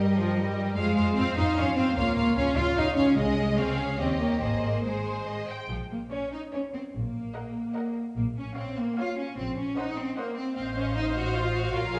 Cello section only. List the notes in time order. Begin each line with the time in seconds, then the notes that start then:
Already playing: G3
0.17 F3
0.36 G3
0.76 G#3
1.16 C4
1.36 D#4
1.57 C#4
1.76 C4
1.97 A#3
2.36 C#4
2.57 F4
2.76 D#4
2.96 C#4
3.16 G#3
3.58 C4
3.79 C#4
3.99 C4
4.21 A#3
4.42 A#3
4.85 G#3
5.70 F3
5.91 A#3
6.11 C#4
6.33 D#4
6.53 C#4
6.74 C4
6.94 A#3
8.17 A#3
8.37 C#4
8.57 C4
8.77 A#3
8.97 F4
9.17 C#4
9.37 C4
9.57 C#4
9.77 D#4
9.97 C4
10.17 A#3
10.36 C4
10.56 C4
10.75 C#4
10.95 D#4
11.16 F#4
11.35 F4
11.55 F#4
11.75 F4
11.95 G#4